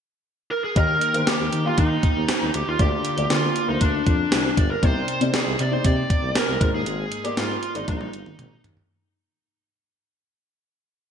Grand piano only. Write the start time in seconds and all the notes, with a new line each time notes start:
0.76 D#3 A#3 D#4 G4 D#5
1.14 A#3 D#4 G4 C5
1.65 A#3 D#4 G4 F5
2.79 D3 A#3 D4 F4 D5
3.17 A#3 D4 F4 D5
3.68 A#3 D4 F4 C5
4.82 C3 C4 D#4 G4 D5
5.21 C4 D#4 G4 D5
5.71 C4 D#4 G4 D5
6.60 G#2 A#3 D#4 G#4 C5
7.24 A#3 D#4 G#4 D5
7.75 A#3 D#4 G#4 D5